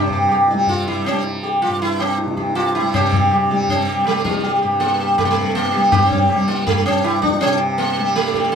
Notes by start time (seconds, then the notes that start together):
Already playing: G2 C3 G3 C4
0.10 G4, tabla ge
0.29 G4, tabla na
0.48 G4, tabla te
0.54 G3
0.67 F4, tabla tin, tabla ge
0.86 E4, tabla na
1.05 C4, tabla na
1.12 G3
1.24 tabla te
1.43 G4, tabla tin
1.62 F4, tabla na
1.69 G2
1.80 E4, tabla tin
2.00 C4, tabla na
2.18 tabla te
2.26 C3, tabla te
2.37 G4, tabla ke
2.47 tabla te
2.55 F4, tabla na
2.75 E4, tabla na
2.82 G3
2.94 C3 C4, tabla na, tabla ge
3.13 G4, tabla ge
3.31 G4, tabla na
3.50 G3 G4, tabla te
3.68 C4, tabla tin, tabla ge
3.87 G4, tabla na
4.06 G3 A3, tabla na
4.24 G3, tabla ke
4.34 tabla te
4.44 G4, tabla tin
4.62 G2 G4, tabla na
4.80 A#3, tabla tin
4.99 G4, tabla na
5.18 C3 A3, tabla na, tabla ge
5.25 A#3
5.31 A3
5.37 tabla ge
5.55 A#3, tabla na
5.74 G3 G4, tabla na
5.92 A#3, tabla na, tabla ge
6.10 C4 G4, tabla ge
6.30 G3, tabla na
6.48 A#3, tabla te
6.67 A3, tabla tin, tabla ge
6.86 G2 C4, tabla na
7.04 E4, tabla na
7.22 D4, tabla ke
7.33 tabla te
7.41 C4, tabla tin
7.45 C3
7.59 G4, tabla na
7.78 A#3, tabla tin
7.96 G4, tabla na
8.00 G3
8.16 A3, tabla na
8.33 G4, tabla ke
8.52 A3